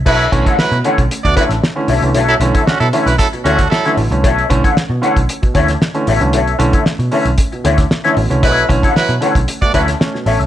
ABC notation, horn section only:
X:1
M:4/4
L:1/16
Q:1/4=115
K:Bm
V:1 name="Horn section"
[F,EB]2 z [F,EA] [F,EB]2 z3 [A,Fd] [F,EB] z4 z | z [F,EA] z [F,EA] [D,CF] [F,EA] z [F,EB] [F,EA] z [D,CF]2 [F,EA]2 z2 | z16 | z16 |
[F,EB]2 z [F,EA] [F,EB]2 z3 [A,Fd] [F,EB] z4 z |]